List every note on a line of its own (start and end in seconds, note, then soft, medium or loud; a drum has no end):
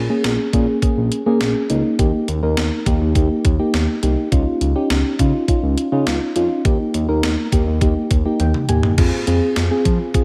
0.10 0.49 A#3 medium
0.10 0.49 C#4 medium
0.10 0.49 G#4 medium
0.24 0.37 A#1 loud
0.24 snare loud
0.24 closed hi-hat medium
0.53 0.66 A#2 loud
0.53 0.79 A#3 medium
0.53 0.79 C#4 medium
0.53 0.80 G#4 medium
0.53 kick medium
0.53 closed hi-hat medium
0.82 1.22 A#3 medium
0.82 1.22 C#4 medium
0.82 1.22 G#4 medium
0.82 kick medium
0.82 closed hi-hat medium
0.97 1.10 A#1 medium
1.12 closed hi-hat medium
1.26 1.39 A#2 loud
1.26 1.65 A#3 medium
1.26 1.65 C#4 medium
1.26 1.65 G#4 medium
1.41 1.54 A#1 medium
1.41 snare loud
1.41 closed hi-hat medium
1.70 1.83 C#2 medium
1.70 1.96 A#3 medium
1.70 1.96 C#4 medium
1.70 1.96 D#4 medium
1.70 closed hi-hat medium
1.99 2.12 D#2 loud
1.99 2.38 A#3 medium
1.99 2.38 D#4 medium
1.99 2.38 G4 medium
1.99 kick loud
1.99 closed hi-hat medium
2.28 2.41 D#2 medium
2.28 closed hi-hat medium
2.43 2.56 D#2 loud
2.43 2.82 A#3 medium
2.43 2.82 D#4 medium
2.43 2.82 A#4 medium
2.57 2.70 D#2 medium
2.57 snare loud
2.57 closed hi-hat medium
2.86 2.99 D#2 medium
2.86 3.13 A#3 medium
2.86 3.13 D#4 medium
2.86 3.13 G4 medium
2.86 kick medium
2.86 closed hi-hat medium
3.01 3.14 D#2 medium
3.15 3.28 D#2 loud
3.15 3.55 A#3 medium
3.15 3.55 D#4 medium
3.15 3.55 G4 medium
3.15 kick medium
3.15 closed hi-hat medium
3.45 3.58 D#2 loud
3.45 kick medium
3.45 closed hi-hat medium
3.59 3.98 A#3 medium
3.59 3.98 D#4 medium
3.59 3.98 G4 medium
3.74 3.87 D#2 loud
3.74 snare loud
3.74 closed hi-hat medium
4.03 4.16 C2 medium
4.03 4.29 A#3 medium
4.03 4.29 D#4 medium
4.03 4.29 G4 medium
4.03 closed hi-hat medium
4.32 4.45 C#2 loud
4.32 4.71 C#4 medium
4.32 4.71 D#4 medium
4.32 4.71 F4 medium
4.32 kick loud
4.32 closed hi-hat medium
4.61 4.74 C#2 medium
4.61 closed hi-hat medium
4.76 5.15 C#4 medium
4.76 5.15 D#4 medium
4.76 5.15 G4 medium
4.90 5.03 C#2 medium
4.90 snare loud
4.90 closed hi-hat medium
5.19 5.32 C#3 loud
5.19 5.45 C#4 medium
5.19 5.45 D#4 medium
5.19 5.45 F4 medium
5.19 kick medium
5.19 closed hi-hat medium
5.48 5.88 C#4 medium
5.48 5.88 D#4 medium
5.48 5.88 F4 medium
5.48 kick medium
5.48 closed hi-hat medium
5.63 5.76 C#2 medium
5.78 closed hi-hat medium
5.92 6.05 C#3 medium
5.92 6.31 C#4 medium
5.92 6.31 D#4 medium
5.92 6.31 F4 medium
6.07 6.20 C#2 loud
6.07 snare loud
6.07 closed hi-hat medium
6.36 6.49 F2 loud
6.36 6.62 C#4 medium
6.36 6.62 D#4 medium
6.36 6.62 F4 medium
6.36 closed hi-hat medium
6.65 6.78 D#2 loud
6.65 7.04 A#3 medium
6.65 7.04 D#4 medium
6.65 7.04 G4 medium
6.65 kick loud
6.65 closed hi-hat medium
6.94 7.07 D#2 loud
6.94 closed hi-hat medium
7.09 7.22 D#2 loud
7.09 7.48 A#3 medium
7.09 7.48 D#4 medium
7.09 7.48 A#4 medium
7.23 7.36 D#2 medium
7.23 snare loud
7.23 closed hi-hat medium
7.52 7.65 D#2 loud
7.52 7.79 A#3 medium
7.52 7.79 D#4 medium
7.52 7.79 G4 medium
7.52 kick medium
7.52 closed hi-hat medium
7.67 7.80 D#2 loud
7.81 7.94 D#2 loud
7.81 8.21 A#3 medium
7.81 8.21 D#4 medium
7.81 8.21 G4 medium
7.81 kick medium
7.81 closed hi-hat medium
8.11 8.24 D#2 medium
8.11 kick medium
8.11 closed hi-hat medium
8.25 8.64 A#3 medium
8.25 8.64 D#4 medium
8.25 8.64 G4 medium
8.40 8.53 D#2 loud
8.40 8.67 G5 medium
8.40 closed hi-hat medium
8.40 high tom medium
8.54 mid tom medium
8.69 8.82 D#2 medium
8.69 8.95 A#3 medium
8.69 8.95 D#4 medium
8.69 8.95 G4 medium
8.69 8.96 G#5 medium
8.69 closed hi-hat medium
8.69 mid tom medium
8.83 floor tom medium
8.98 9.11 F2 loud
8.98 9.24 C4 medium
8.98 9.24 F4 medium
8.98 9.24 G#4 medium
8.98 kick loud
8.98 closed hi-hat medium
8.98 crash medium
9.27 9.40 F2 loud
9.27 9.66 C4 medium
9.27 9.66 F4 medium
9.27 9.66 G#4 medium
9.27 closed hi-hat medium
9.56 9.69 F2 loud
9.56 snare loud
9.56 closed hi-hat medium
9.71 10.10 C4 medium
9.71 10.10 F4 medium
9.71 10.10 G#4 medium
9.85 9.98 F3 loud
9.85 kick medium
9.85 closed hi-hat medium
10.14 10.24 C4 medium
10.14 10.24 F4 medium
10.14 10.24 G#4 medium
10.14 kick medium
10.14 closed hi-hat medium